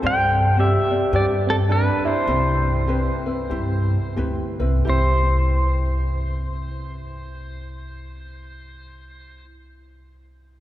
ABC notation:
X:1
M:4/4
L:1/8
Q:"Swing" 1/4=83
K:C
V:1 name="Pedal steel guitar"
g2 e2 d A B c- | c6 z2 | c8- | c8 |]
V:2 name="Ukulele"
[CGcd]2 [CGcd] [CGd] [DGBd]2 [DGBd] [DGd] | [CEG]2 [CEGB] [CEB] [CEG]2 [CEGB] [CEB] | [CEG]8- | [CEG]8 |]
V:3 name="Tine electric piano"
c2 G2 G C D E- | E6 z2 | E8- | E8 |]
V:4 name="Upright bass" clef=bass
G,,4 G,,4 | C,,4 G,,2 D,, C,, | C,,8- | C,,8 |]